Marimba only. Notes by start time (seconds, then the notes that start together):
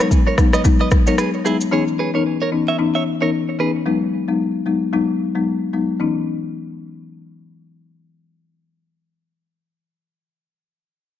0.00 F#3 G#3 B3 D#4
0.37 F#3 G#3 B3 D#4
0.64 F#3 G#3 B3 D#4
1.07 F#3 G#3 B3 D#4
1.45 F#3 G#3 B3 D#4
1.71 E3 B3 C#4 D#4
2.14 E3 B3 C#4 D#4
2.52 E3 B3 C#4 D#4
2.78 E3 B3 C#4 D#4
3.21 E3 B3 C#4 D#4
3.59 E3 B3 C#4 D#4
3.86 F#3 G#3 B3 D#4
4.28 F#3 G#3 B3 D#4
4.66 F#3 G#3 B3 D#4
4.93 F#3 G#3 B3 D#4
5.35 F#3 G#3 B3 D#4
5.73 F#3 G#3 B3 D#4
6.00 E3 B3 C#4 D#4